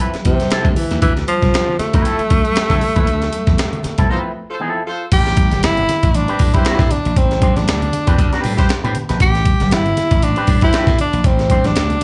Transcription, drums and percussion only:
0.00 closed hi-hat
0.14 snare, closed hi-hat, muted conga
0.25 kick, closed hi-hat, high conga
0.40 snare, closed hi-hat, high conga
0.50 snare, closed hi-hat
0.65 kick, closed hi-hat, muted conga, high conga
0.76 open hi-hat, low conga
0.91 snare, closed hi-hat
1.02 kick, closed hi-hat, muted conga
1.17 snare, closed hi-hat
1.28 closed hi-hat, high conga
1.42 kick, snare, closed hi-hat, high conga
1.54 snare, closed hi-hat, muted conga
1.68 low conga
1.79 snare, closed hi-hat, low conga
1.94 kick, closed hi-hat
2.05 closed hi-hat, muted conga
2.19 closed hi-hat, muted conga
2.30 kick, closed hi-hat, high conga
2.45 closed hi-hat, high conga
2.56 snare, closed hi-hat, muted conga
2.70 kick, snare, closed hi-hat, muted conga, high conga
2.81 open hi-hat, low conga
2.96 kick, closed hi-hat
3.07 closed hi-hat
3.22 snare, closed hi-hat, muted conga
3.33 closed hi-hat, high conga
3.47 kick, snare, closed hi-hat, high conga
3.58 snare, closed hi-hat
3.73 closed hi-hat, muted conga, low conga
3.83 snare, closed hi-hat, low conga
3.98 kick, closed hi-hat
5.12 kick, closed hi-hat, crash
5.26 snare, closed hi-hat, muted conga
5.37 kick, closed hi-hat, high conga
5.51 snare, closed hi-hat, high conga
5.63 snare, closed hi-hat, muted conga
5.77 closed hi-hat, low conga
5.89 snare, closed hi-hat, low conga
6.03 kick, closed hi-hat
6.14 closed hi-hat, muted conga
6.28 closed hi-hat, muted conga
6.39 kick, open hi-hat, high conga
6.54 kick, closed hi-hat, high conga
6.65 snare, closed hi-hat, muted conga
6.79 kick, snare, closed hi-hat, muted conga
6.91 closed hi-hat, low conga
7.05 closed hi-hat
7.16 kick, closed hi-hat, muted conga
7.31 snare, closed hi-hat, muted conga
7.42 kick, closed hi-hat, high conga
7.56 snare, closed hi-hat, high conga
7.68 snare, closed hi-hat, muted conga
7.82 closed hi-hat, muted conga, low conga
7.93 closed hi-hat, low conga
8.07 kick, closed hi-hat
8.18 kick, closed hi-hat, muted conga
8.33 snare, closed hi-hat
8.44 open hi-hat, high conga
8.58 kick, snare, closed hi-hat, high conga
8.69 snare, closed hi-hat, muted conga
8.85 closed hi-hat
8.95 closed hi-hat, low conga
9.09 snare, closed hi-hat
9.20 kick, closed hi-hat, muted conga
9.35 snare, closed hi-hat, muted conga
9.45 kick, closed hi-hat, high conga
9.60 snare, closed hi-hat, high conga
9.71 snare, closed hi-hat
9.86 closed hi-hat, muted conga, low conga
9.97 snare, closed hi-hat, low conga
10.11 kick, closed hi-hat
10.22 closed hi-hat, muted conga
10.36 closed hi-hat, muted conga
10.47 kick, open hi-hat, high conga
10.61 kick, closed hi-hat, high conga
10.73 snare, closed hi-hat, muted conga
10.87 kick, snare, closed hi-hat, muted conga
10.99 closed hi-hat, low conga
11.13 closed hi-hat
11.24 kick, closed hi-hat
11.39 snare, closed hi-hat
11.50 kick, closed hi-hat, high conga
11.64 snare, closed hi-hat, high conga
11.76 snare, closed hi-hat, muted conga
11.90 closed hi-hat, muted conga, low conga

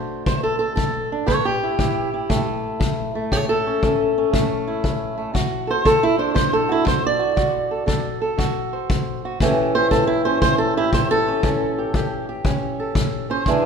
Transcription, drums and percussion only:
0.26 kick
0.77 kick
1.28 kick
1.79 kick
2.30 kick
2.81 kick
3.32 kick
3.83 kick
4.34 kick
4.84 kick
5.35 kick
5.85 kick
6.36 kick
6.87 kick
7.37 kick
7.88 kick
8.39 kick
8.90 kick
9.40 kick
9.91 kick
10.42 kick
10.93 kick
11.43 kick
11.94 kick
12.45 kick
12.95 kick
13.46 kick

